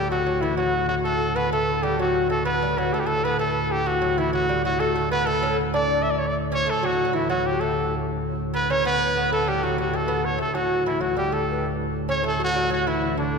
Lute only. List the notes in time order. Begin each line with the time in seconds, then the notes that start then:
Already playing: G3
0.12 F#3
0.27 F#3
0.42 E3
0.57 F#3
0.89 F#3
1.05 A3
1.36 B3
1.53 A3
1.83 G3
1.99 F#3
2.30 A3
2.45 B3
2.62 G3
2.78 F#3
2.94 A3
3.06 A3
3.25 B3
3.39 A3
3.86 F#3
4.02 F#3
4.18 E3
4.33 F#3
4.49 G3
4.65 F#3
4.80 A3
4.96 A3
5.12 B3
5.27 A3
5.43 C#4
5.74 D4
6.52 C#4
6.66 A3
6.83 F#3
6.93 F#3
7.05 F#3
7.13 E3
7.30 F#3
7.61 A3
8.54 B3
8.70 C#4
8.85 B3
9.17 B3
9.33 A3
9.48 G3
9.63 F#3
9.78 F#3
9.93 A3
10.08 B3
10.38 A3
10.55 F#3
10.86 E3
11.01 F#3
11.16 G3
11.32 A3
12.09 C#4
12.24 A3
12.40 F#3
12.54 G3
12.70 F#3
12.87 E3
13.17 D3